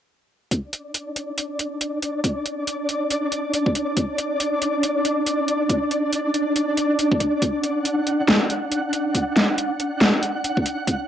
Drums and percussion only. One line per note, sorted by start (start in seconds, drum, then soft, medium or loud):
0.51 kick loud
0.51 closed hi-hat medium
0.73 closed hi-hat medium
0.94 closed hi-hat medium
1.16 closed hi-hat medium
1.38 closed hi-hat medium
1.59 closed hi-hat medium
1.81 closed hi-hat medium
2.02 closed hi-hat medium
2.24 kick loud
2.24 closed hi-hat medium
2.46 closed hi-hat soft
2.67 closed hi-hat medium
2.89 closed hi-hat medium
3.11 closed hi-hat medium
3.32 closed hi-hat soft
3.54 closed hi-hat medium
3.66 kick loud
3.75 closed hi-hat medium
3.97 kick loud
3.97 closed hi-hat medium
4.18 closed hi-hat soft
4.40 closed hi-hat medium
4.62 closed hi-hat soft
4.83 closed hi-hat medium
5.05 closed hi-hat soft
5.26 closed hi-hat medium
5.48 closed hi-hat soft
5.69 kick loud
5.69 closed hi-hat medium
5.91 closed hi-hat soft
6.13 closed hi-hat medium
6.34 closed hi-hat soft
6.56 closed hi-hat medium
6.77 closed hi-hat soft
6.99 closed hi-hat medium
7.12 kick loud
7.20 kick medium
7.20 closed hi-hat soft
7.42 kick loud
7.42 closed hi-hat medium
7.63 closed hi-hat soft
7.85 closed hi-hat medium
8.07 closed hi-hat soft
8.28 snare loud
8.28 closed hi-hat medium
8.50 closed hi-hat soft
8.72 closed hi-hat medium
8.93 closed hi-hat soft
9.15 kick loud
9.15 closed hi-hat medium
9.36 snare medium
9.36 closed hi-hat soft
9.58 closed hi-hat medium
9.80 closed hi-hat soft
10.01 snare loud
10.01 closed hi-hat medium
10.23 closed hi-hat soft
10.44 closed hi-hat medium
10.57 kick loud
10.66 closed hi-hat soft
10.88 kick loud
10.88 closed hi-hat medium